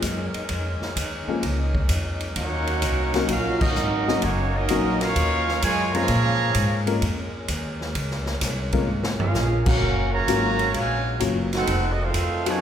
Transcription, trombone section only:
2.37 A#3 C#4 F#4
3.30 F4
3.61 F#3 A#3 D#4
4.22 F#3 A#3 C#4
4.56 F#3 A#3 D#4
5.01 A#3 C#4 F4
5.64 G#3
5.95 C#3 F3 A#3
9.19 G#3 C#4 F4
9.65 A#3 C#4 F#4
10.12 C#3 F#3 A#3
10.74 C#3 F#3 G#3
11.53 C4 D#4 F#4
12.01 A3 C4 F4
12.49 C#4

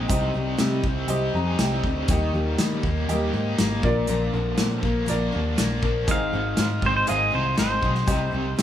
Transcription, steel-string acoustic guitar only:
0.08 C3 G3 C4 D#4 G4
0.34 C4 D#4 G4
0.57 G3 C4 D#4 G4
0.84 C4 D#4 G4
1.08 C3 G3 C4 D#4 G4
1.34 C4 D#4 G4
1.60 G3 C4 D#4 G4
1.84 C4 D#4 G4
2.08 D#3 G3 A#3 D#4 G4
2.34 A#3 D#4 G4
2.58 G3 A#3 D#4 G4
2.84 A#3 D#4 G4
3.09 D#3 G3 A#3 D#4 G4
3.34 A#3 D#4 G4
3.59 G3 A#3 D#4 G4
3.82 A#3 D4 A#4
3.86 F3
4.08 A#2 D3 F3 A#3 D4 A#4
4.34 F3 A#3 D4 A#4
4.58 F3 A#3 D4 A#4
4.82 F3 A#3 D4 A#4
5.06 A#2 D3 F3 A#3 D4 A#4
5.32 F3 A#3 D4 A#4
5.56 F3 A#3 D4 A#4
5.82 F3 A#3 D4 A#4
6.07 G#2 D#3 G#3 C4 D#4 G#4
6.33 G#3 C4 D#4 G#4
6.57 G#3 C4 D#4 G#4
6.82 G#3 C4 D#4 G#4
7.07 G#2 D#3 G#3 C4 D#4 G#4
7.31 G#3 C4 D#4 G#4
7.56 G#3 C4 D#4 G#4
7.81 G#3 C4 D#4 G#4
8.06 C3 G3 C4 D#4 G4
8.31 C4 D#4 G4
8.57 G3 C4 D#4 G4

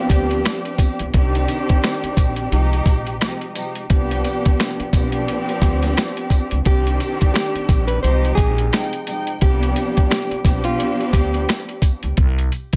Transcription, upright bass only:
0.10 D2
1.00 C#2
1.14 C2
2.03 muted upright bass stroke
2.17 A#1
2.52 C2
2.86 A#1
3.90 C2
4.79 muted upright bass stroke
4.93 B1
5.62 D2
6.52 C#2
6.66 C2
7.55 muted upright bass stroke
7.69 A#1
8.04 C2
8.37 A#1
9.42 C2
10.31 muted upright bass stroke
10.45 B1
11.13 D2
12.03 C#2
12.18 C2

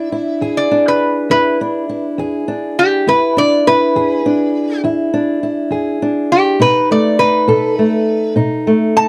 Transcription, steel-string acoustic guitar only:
Already playing: D4 E4
0.12 E4
0.41 E2 G#4
0.71 D4
1.30 E2 E4
1.61 D4
1.89 E4
2.18 E2 G#4
2.48 D4
3.07 E2 E4
3.37 D4
3.67 E4
3.96 E2 G#4
4.26 D4
4.84 E2 E4
5.14 D4
5.43 E4
5.71 E2 G#4
6.02 D4
6.60 B2 D#4
6.91 A3
7.20 D#4
7.48 B2 A4
7.79 A3
8.36 B2 D#4
8.67 A3
8.97 D#4

